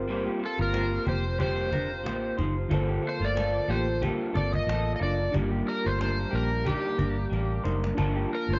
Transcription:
Already playing: fingered electric bass G1, reed electric piano C4 F4 A#4 C5
0.08 clean electric guitar G3 A#3 F4 G4 C5, cajon slap
0.26 clean electric guitar A#3 G4, cajon slap
0.40 clean electric guitar F4 G4 C5, cajon slap
0.46 electric slide guitar A4
0.59 fingered electric bass G1, clean electric guitar A#3 F4, electric slide guitar A#4
0.73 clean electric guitar A#3 F4 G4 C5, cajon slap
1.05 fingered electric bass F1, clean electric guitar A#3 F4 G4 C5, electric slide guitar C5, cajon bass
1.38 clean electric guitar G3 A#3 F4 G4 C5, electric slide guitar C5, cajon bass
1.71 clean electric guitar D4 F4 G4 A#4 C5, cajon bass
2.04 fingered electric bass A1, clean electric guitar A#3 F4 G4 C5, cajon slap
2.37 fingered electric bass F#1, clean electric guitar D#4 F4 G4 C5, cajon bass
2.69 fingered electric bass G1, clean electric guitar G2 D3 F3 A#3 F4 A4, reed electric piano D3 F4 A4, cajon bass
2.74 reed electric piano C5
2.89 clean electric guitar A#3 G4, cajon slap
3.02 clean electric guitar F3 A#3 F4 A4, cajon slap
3.09 electric slide guitar C5
3.20 fingered electric bass G1, clean electric guitar A3 F4
3.25 electric slide guitar D5
3.35 clean electric guitar F3 A#3 F4 A4, cajon slap
3.68 fingered electric bass A1, clean electric guitar F3 A#3 F4 G4 A4, electric slide guitar C5, cajon slap
4.01 clean electric guitar G2 D3 F3 A#3 F4 G4 A4, cajon bass
4.33 fingered electric bass G1, clean electric guitar F3 A#3 C4 F4 A4, electric slide guitar D5, cajon bass
4.54 electric slide guitar D#5, cajon bass
4.67 fingered electric bass A1, clean electric guitar F3 A#3 F4, cajon slap
4.71 clean electric guitar A4
4.96 clean electric guitar A4 A#4, electric slide guitar D#5
5.00 fingered electric bass F#1, clean electric guitar F3 A#3 D4 F4, electric slide guitar D5, cajon slap
5.31 fingered electric bass G1, clean electric guitar G2 D#3 G3 A#3 D4 A#4, reed electric piano D4 F4 G4, cajon bass
5.36 reed electric piano A#3
5.51 clean electric guitar A#3 G4
5.66 clean electric guitar G3 A#3 D4 A#4, electric slide guitar A#4, cajon slap
5.85 fingered electric bass G1, clean electric guitar A3 F4, electric slide guitar C5
5.99 clean electric guitar G3 A#3 D4 A#4, electric slide guitar C5, cajon slap
6.31 fingered electric bass A#1, clean electric guitar G3 A#3 D4 G4 A#4
6.35 electric slide guitar A#4
6.64 clean electric guitar G2 D#3 G3 A#3 D4 G4 A#4, electric slide guitar G4, cajon bass
6.97 fingered electric bass G1, clean electric guitar G3 A#3 D4 A#4, cajon bass
7.30 fingered electric bass A1, clean electric guitar G3 A#3 D4 A#4, cajon slap
7.64 fingered electric bass F#1, clean electric guitar G3 A#3 D4 D#4 A#4 C5, cajon slap
7.84 cajon slap
7.95 fingered electric bass G1, clean electric guitar G2 D3 F3 A#3 D4, reed electric piano D4 F4 A5, cajon bass
7.99 reed electric piano A#3, clean electric guitar A#4
8.16 clean electric guitar A#3 G4, cajon slap
8.29 clean electric guitar F3 A#3 D4 A#4, cajon slap
8.35 electric slide guitar A#4
8.49 fingered electric bass G1, clean electric guitar A3 F4
8.53 electric slide guitar C5

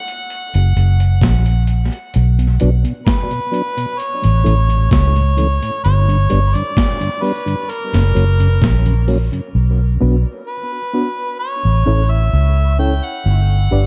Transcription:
Already playing: harmonica F#5
0.08 closed hi-hat
0.30 closed hi-hat
0.54 fingered electric bass F#1, closed hi-hat
0.76 fingered electric bass F#1, closed hi-hat
1.00 closed hi-hat
1.21 fingered electric bass A#1, kick, snare, closed hi-hat
1.46 closed hi-hat
1.67 closed hi-hat
1.92 closed hi-hat
2.14 fingered electric bass B1, closed hi-hat
2.39 tonewheel organ B2, closed hi-hat
2.60 fingered electric bass B1, tonewheel organ F#3 B3 D4, closed hi-hat
2.84 tonewheel organ B2, closed hi-hat
3.06 harmonica B4, kick, snare, closed hi-hat
3.31 tonewheel organ B2, closed hi-hat
3.51 tonewheel organ F#3 B3 D4, closed hi-hat
3.77 tonewheel organ B2, closed hi-hat
3.98 harmonica C#5, closed hi-hat
4.22 fingered electric bass A1, tonewheel organ A2, closed hi-hat
4.44 fingered electric bass A1, tonewheel organ E3 A3 C#4, closed hi-hat
4.69 tonewheel organ A2, closed hi-hat
4.91 fingered electric bass C#2, harmonica C#5, kick, snare, closed hi-hat
5.15 tonewheel organ A2, closed hi-hat
5.37 tonewheel organ E3 A3 C#4, closed hi-hat
5.62 tonewheel organ A2, closed hi-hat
5.84 fingered electric bass G1, harmonica C#5, closed hi-hat
6.08 tonewheel organ G2 D3, closed hi-hat
6.30 fingered electric bass G1, tonewheel organ G3 B3 D4, closed hi-hat
6.55 tonewheel organ G2 D3, harmonica D5, closed hi-hat
6.77 kick, snare, closed hi-hat
7.01 tonewheel organ G2 D3, closed hi-hat
7.22 tonewheel organ G3 B3 D4, harmonica B4, open hi-hat
7.46 tonewheel organ G2 D3, closed hi-hat
7.70 harmonica A#4, closed hi-hat
7.93 fingered electric bass F#1, tonewheel organ F#2 C#3, snare, closed hi-hat
8.14 fingered electric bass F#1, tonewheel organ F#3 A#3 C#4, closed hi-hat
8.40 tonewheel organ F#2 C#3, closed hi-hat
8.62 fingered electric bass A#1, kick, snare, closed hi-hat
8.86 tonewheel organ F#2 C#3, closed hi-hat
9.08 tonewheel organ F#3 A#3 C#4, open hi-hat
9.32 tonewheel organ F#2 C#3, closed hi-hat
9.55 fingered electric bass B1
10.01 fingered electric bass B1, reed electric piano B3 D4 F#4 B4
10.48 harmonica B4
10.72 reed electric piano F#4 B4
10.94 reed electric piano B3 D4 F#4 B4
11.40 harmonica C#5
11.65 fingered electric bass A1
11.86 fingered electric bass A1, reed electric piano C#4 E4 A4 C#5
12.11 harmonica E5
12.33 fingered electric bass C#2
12.79 reed electric piano C#4 E4 A4 C#5, harmonica G5
13.04 harmonica F#5
13.26 fingered electric bass G1
13.71 fingered electric bass G1, reed electric piano D4 G4 B4 D5

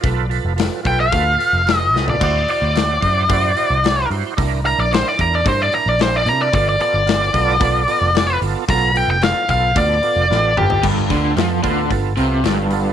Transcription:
0.01 picked electric bass B1, tonewheel organ F4 A4 B4, kick, open hi-hat
0.29 tonewheel organ F4 A4 B4, open hi-hat
0.45 picked electric bass F1
0.56 tonewheel organ F4 A4 B4, snare, open hi-hat
0.83 picked electric bass B1, tonewheel organ F4 A4 B4, lead electric guitar G5, kick, open hi-hat
1.00 lead electric guitar F5
1.11 picked electric bass D2, tonewheel organ F4 A4 B4, kick, open hi-hat
1.38 tonewheel organ F4 A4 B4, open hi-hat
1.53 picked electric bass F1
1.66 tonewheel organ F4 A4 B4, snare, open hi-hat
1.77 lead electric guitar D#5
1.94 picked electric bass C2, tonewheel organ F4 A4 B4, snare
2.08 lead electric guitar D5, floor tom
2.20 picked electric bass D2, tonewheel organ E4 F#4 C5, kick, crash
2.24 lead electric guitar D5
2.48 tonewheel organ E4 F#4 C5, lead electric guitar D5, open hi-hat
2.62 picked electric bass D2
2.73 tonewheel organ E4 F#4 C5, open hi-hat
2.77 snare
3.00 picked electric bass F#2, tonewheel organ E4 F#4 C5, kick, open hi-hat
3.28 picked electric bass F#2, tonewheel organ E4 F#4 C5, kick, open hi-hat
3.56 tonewheel organ E4 F#4 C5, open hi-hat
3.70 picked electric bass C2
3.83 tonewheel organ E4 F#4 C5, snare, open hi-hat
4.10 picked electric bass G2, tonewheel organ E4 F#4 C5, open hi-hat
4.37 picked electric bass C2, tonewheel organ D4 E4 A#4, kick, open hi-hat
4.64 tonewheel organ D4 E4 A#4, lead electric guitar A#5, open hi-hat
4.79 picked electric bass A#1, lead electric guitar D5
4.90 tonewheel organ D4 E4 A#4, lead electric guitar C5, open hi-hat
4.94 snare
5.08 lead electric guitar D5
5.17 picked electric bass E2, tonewheel organ D4 E4 A#4, lead electric guitar A#5, kick, open hi-hat
5.35 lead electric guitar D5
5.44 picked electric bass G2, tonewheel organ D4 E4 A#4, lead electric guitar C5, kick, open hi-hat
5.62 lead electric guitar D5
5.71 tonewheel organ D4 E4 A#4, lead electric guitar A#5, open hi-hat
5.86 picked electric bass A#1, lead electric guitar D5
5.99 tonewheel organ D4 E4 A#4, lead electric guitar C5, snare, open hi-hat
6.16 lead electric guitar D5
6.25 picked electric bass C3, tonewheel organ D4 E4 A#4, lead electric guitar A#5, open hi-hat
6.42 lead electric guitar D5
6.52 picked electric bass G1, tonewheel organ B3 F4 A4, lead electric guitar D5, kick, open hi-hat
6.69 lead electric guitar D5
6.79 tonewheel organ B3 F4 A4, lead electric guitar D5, open hi-hat
6.94 picked electric bass G1
7.06 tonewheel organ B3 F4 A4, snare, open hi-hat
7.33 picked electric bass B1, tonewheel organ B3 F4 A4, kick, open hi-hat
7.49 snare
7.60 picked electric bass B1, tonewheel organ B3 F4 A4, kick, open hi-hat
7.87 tonewheel organ B3 F4 A4, open hi-hat
8.01 picked electric bass F1
8.14 tonewheel organ B3 F4 A4, snare, open hi-hat
8.41 picked electric bass G1, tonewheel organ B3 F4 A4, open hi-hat
8.68 picked electric bass B1, tonewheel organ B3 F4 A4, lead electric guitar A#5, kick, open hi-hat
8.94 tonewheel organ B3 F4 A4, lead electric guitar G5, open hi-hat
9.08 picked electric bass F1, lead electric guitar G5
9.21 tonewheel organ B3 F4 A4, lead electric guitar F5, snare, open hi-hat
9.48 picked electric bass B1, tonewheel organ B3 F4 A4, lead electric guitar F5, kick, open hi-hat
9.75 picked electric bass D2, tonewheel organ B3 F4 A4, lead electric guitar D5, kick, open hi-hat
10.02 tonewheel organ B3 F4 A4, open hi-hat
10.16 picked electric bass F1
10.30 picked electric bass A1, tonewheel organ B3 F4 A4, snare
10.57 picked electric bass G1, tonewheel organ B3 F4 A4, lead electric guitar G4, mid tom
10.70 floor tom
10.83 picked electric bass G1, overdriven electric guitar G2, tonewheel organ B3 F4 A4, kick, crash
11.10 picked electric bass D2, overdriven electric guitar D3, tonewheel organ B3 F4 A4, kick, open hi-hat
11.37 picked electric bass F2, overdriven electric guitar F3, tonewheel organ B3 F4 A4, snare, open hi-hat
11.63 picked electric bass D2, overdriven electric guitar D3, tonewheel organ B3 F4 A4, kick, open hi-hat
11.90 picked electric bass G1, overdriven electric guitar G2, tonewheel organ B3 F4 A4, kick, open hi-hat
12.17 picked electric bass C2, overdriven electric guitar C3, tonewheel organ B3 F4 A4, open hi-hat
12.44 picked electric bass G1, overdriven electric guitar G2, tonewheel organ B3 F4 A4, snare, open hi-hat
12.71 tonewheel organ B3 F4 A4, open hi-hat

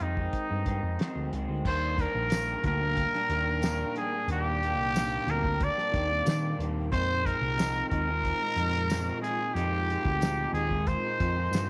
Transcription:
0.00 picked electric bass F2, clean electric guitar C3 D#3 G#3 C4, trumpet D#4, closed hi-hat
0.16 clean electric guitar D#3 G#3 C4, kick
0.33 kick, closed hi-hat
0.49 picked electric bass G2, clean electric guitar D#3 G#3 C4
0.65 picked electric bass G2, clean electric guitar C3 D#3 G#3 C4, kick, closed hi-hat
0.83 picked electric bass F2
0.99 clean electric guitar F2 C3 D#3 G#3 C4, snare, closed hi-hat
1.16 picked electric bass D2
1.32 picked electric bass C#2, clean electric guitar C3 D#3 G#3 C4, closed hi-hat
1.48 picked electric bass D2, clean electric guitar D#3 G#3 C4
1.65 picked electric bass D#2, ambient pad A#2 A#3 D4 G5, clean electric guitar D#3 G3 A#3 D4, trumpet C5, kick, crash
1.96 clean electric guitar D#3 G3 A#3 D4, kick, closed hi-hat
2.01 trumpet A#4
2.15 picked electric bass A#1
2.30 clean electric guitar D#3 G3 A#3 D4, snare, closed hi-hat, tambourine
2.63 picked electric bass D2, clean electric guitar D#3 G3 A#3 D4, trumpet A#4, kick, closed hi-hat
2.80 clean electric guitar G3 A#3 D4
2.97 kick, closed hi-hat
3.14 clean electric guitar G3 A#3 D4, snare
3.29 picked electric bass D#2, clean electric guitar D#3 G3 A#3 D4, closed hi-hat
3.47 clean electric guitar G3 A#3 D4
3.62 clean electric guitar D#3 G3 A#3 D4, snare, closed hi-hat, tambourine
3.96 clean electric guitar D#3 G3 A#3 D4, trumpet G#4, closed hi-hat
4.12 clean electric guitar G3 A#3 D4
4.28 picked electric bass D#2, clean electric guitar D#3 G3 A#3 D4, ambient pad C4, trumpet G4, closed hi-hat
4.62 clean electric guitar D#3 G3 A#3 D4, closed hi-hat
4.78 picked electric bass C2
4.95 clean electric guitar D#3 G3 A#3 D4, snare, closed hi-hat, tambourine
5.26 picked electric bass D2, clean electric guitar D#3 G3 A#3 D4, closed hi-hat
5.30 trumpet A#4
5.42 clean electric guitar G3 A#3 D4, kick
5.61 trumpet D5, kick, closed hi-hat
5.75 clean electric guitar G3 A#3 D4, snare
5.90 picked electric bass D#2, clean electric guitar D#3 G3 A#3 D4, kick, closed hi-hat
6.08 clean electric guitar G3 A#3 D4
6.24 clean electric guitar D#3 G3 A#3 D4, picked electric bass D#3, snare, closed hi-hat, tambourine
6.57 picked electric bass D#2, clean electric guitar D#3 G3 A#3 D4, closed hi-hat
6.91 clean electric guitar F2 C3 D#3 G#3 D#4, picked electric bass F2, ambient pad G#3 C4 F4, trumpet C5, kick, closed hi-hat
7.23 clean electric guitar C3 D#3 G#3 D#4, trumpet A#4, kick, closed hi-hat
7.41 picked electric bass C2
7.56 clean electric guitar F2 C3 D#3 G#3 D#4, snare, closed hi-hat, tambourine
7.89 picked electric bass D#2, clean electric guitar C3 D#3 G#3 D#4, trumpet A#4, kick, closed hi-hat
8.07 clean electric guitar D#3 G#3 D#4
8.24 kick, closed hi-hat
8.40 clean electric guitar D#3 G#3 D#4
8.56 picked electric bass F2, clean electric guitar C3 D#3 G#3 D#4, closed hi-hat
8.73 clean electric guitar D#3 G#3 D#4
8.90 clean electric guitar F2 C3 D#3 G#3 D#4, snare, closed hi-hat, tambourine
9.22 clean electric guitar C3 D#3 G#3 D#4, trumpet G#4, closed hi-hat
9.54 picked electric bass F2, clean electric guitar F2 C3 D#3 G#3 D#4, ambient pad C4, trumpet G4, closed hi-hat
9.88 clean electric guitar C3 D#3 G#3 D#4, closed hi-hat
10.05 picked electric bass D2, kick
10.21 clean electric guitar F2 C3 G#3 D#4, snare, closed hi-hat, tambourine
10.53 picked electric bass D#2, clean electric guitar C3 D#3 G#3 D#4, trumpet G#4, closed hi-hat
10.70 clean electric guitar D#3 G#3 D#4, kick
10.87 trumpet C5, kick, closed hi-hat
11.03 clean electric guitar D#3 G#3 D#4
11.20 picked electric bass F2, clean electric guitar C3 D#3 G#3 D#4, kick, closed hi-hat
11.37 clean electric guitar D#3 G#3 D#4
11.51 clean electric guitar F2 C3 D#3 G#3 D#4, picked electric bass G2, snare, closed hi-hat, tambourine

